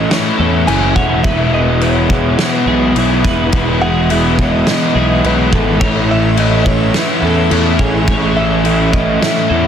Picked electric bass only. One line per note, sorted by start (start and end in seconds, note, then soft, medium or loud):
0.39 0.66 E2 medium
0.68 0.94 F#1 medium
0.96 1.22 E1 medium
1.24 2.34 E1 loud
2.66 2.93 B1 medium
2.95 3.22 B1 medium
3.24 3.51 E1 medium
3.53 4.62 E1 medium
4.95 5.21 B1 medium
5.24 5.50 B1 medium
5.53 5.79 G#1 medium
5.81 6.90 A1 medium
7.22 7.49 E2 medium
7.51 7.77 E2 medium
7.79 8.06 A1 medium
8.07 9.18 A1 medium
9.50 9.67 E2 medium